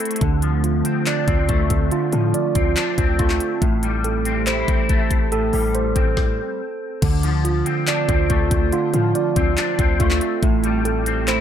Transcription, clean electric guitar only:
0.00 0.21 A3 medium
0.00 0.21 C4 medium
0.00 0.21 E4 loud
0.22 1.28 D3 medium
0.42 1.49 F3 medium
0.85 1.27 C4 medium
1.07 2.13 D4 loud
1.28 2.34 C4 medium
1.49 2.55 A3 medium
1.92 2.98 D3 medium
2.13 3.19 F3 medium
2.56 2.97 C4 medium
2.77 3.62 D4 medium
2.98 3.62 C4 medium
3.19 3.62 A3 medium
3.62 4.68 A2 medium
3.83 4.89 G3 medium
4.26 4.67 C4 medium
4.47 5.53 E4 loud
4.68 5.75 C4 medium
4.89 5.95 A3 medium
5.32 6.38 A2 loud
5.53 6.60 G3 medium
5.96 7.02 C4 medium
7.03 8.09 D3 medium
7.24 8.30 F3 medium
7.66 8.08 C4 medium
7.88 8.94 D4 loud
8.09 9.15 C4 medium
8.30 9.36 A3 medium
8.72 9.79 D3 medium
8.94 10.00 F3 medium
9.36 9.78 C4 medium
9.58 10.43 D4 medium
9.79 10.43 C4 medium
10.00 10.43 A3 loud
10.43 11.41 A2 medium
10.64 11.41 G3 medium
11.06 11.41 C4 medium
11.28 11.41 E4 loud

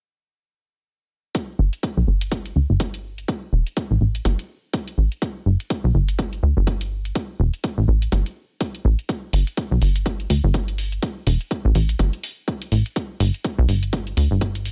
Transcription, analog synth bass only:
1.59 1.70 G1 loud
1.97 2.05 B1 loud
2.07 2.52 G1 medium
2.56 2.67 D2 medium
2.70 3.25 G1 medium
3.53 3.64 E1 loud
3.91 3.99 A1 loud
4.01 4.21 A1 medium
4.25 4.36 G1 loud
4.98 5.09 A1 medium
5.46 5.57 G1 medium
5.84 5.92 B1 loud
5.95 6.40 G1 medium
6.43 6.54 D2 medium
6.57 7.12 G1 loud
7.40 7.51 E1 loud
7.78 7.86 A1 loud
7.88 8.08 A1 medium
8.12 8.23 G1 medium
8.85 8.96 A1 medium
9.33 9.44 G1 loud
9.71 9.79 B1 loud
9.82 10.27 G1 medium
10.30 10.41 D2 medium
10.44 10.99 G1 medium
11.27 11.38 E1 medium
11.65 11.73 A1 loud
11.75 11.95 A1 medium
11.99 12.10 G1 medium
12.72 12.83 A1 medium
13.20 13.31 G1 loud
13.58 13.67 B1 loud
13.69 14.14 G1 medium
14.17 14.28 D2 medium
14.31 14.72 G1 loud

